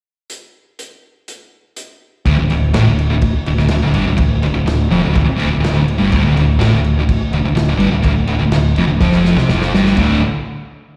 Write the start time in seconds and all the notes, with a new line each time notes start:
0.30 closed hi-hat
0.79 closed hi-hat
1.28 closed hi-hat
1.76 closed hi-hat
2.25 D1 D2, kick, crash
2.37 D1 D2
2.50 D1 D2, crash
2.74 A1 A2, snare, crash
2.86 D1 D2
2.99 crash
3.10 D1 D2
3.22 kick, crash
3.46 D1 D2, crash
3.57 D1 D2, snare
3.68 D1 D2, snare, crash
3.83 D1 D2
3.94 G1 G2, crash
4.07 D1 D2
4.16 D1 D2, kick, crash
4.43 D1 D2, crash
4.54 D1 D2
4.66 D1 D2, snare, crash
4.90 F1 F2, crash
5.03 D1 D2
5.13 D1 D2, kick, crash
5.24 muted distorted electric guitar stroke
5.30 muted picked electric bass stroke
5.38 D2, crash
5.43 D1
5.51 D1 D2
5.61 D2, snare, crash
5.67 D1
5.74 D2
5.79 D1
5.88 crash
5.98 G1 G2
6.11 D1 D2, kick, crash
6.23 D1 D2
6.35 D1 D2, crash
6.58 A1 A2, snare, crash
6.70 D1 D2
6.84 crash
6.96 D1 D2
7.09 kick, crash
7.31 D1 D2, crash
7.42 D1 D2
7.55 D1 D2, snare, crash
7.66 D1 D2
7.76 G1 G2, crash
7.89 D1 D2
8.03 D1 D2, kick, crash
8.26 D1 D2, crash
8.39 D1 D2
8.49 D1 D2, snare, crash
8.76 F1 F2, crash
8.87 D1 D2
9.00 F1 F2, kick, snare
9.12 snare
9.25 snare
9.35 C2 C3, snare
9.48 F1 F2, snare
9.62 snare
9.70 G1
9.74 G2, snare
9.86 snare
9.97 D1 D2 A2 D3, kick, crash